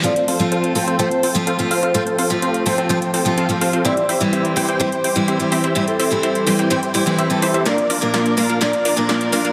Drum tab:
HH |xxoxxxoxxxoxxxox|xxoxxxoxxxoxxxox|xxoxxxoxxxoxxxox|xxoxxxoxxxoxxxox|
SD |----------------|----------------|----------------|----------------|

HH |xxoxxxoxxxoxxxox|
SD |o---o---o---o---|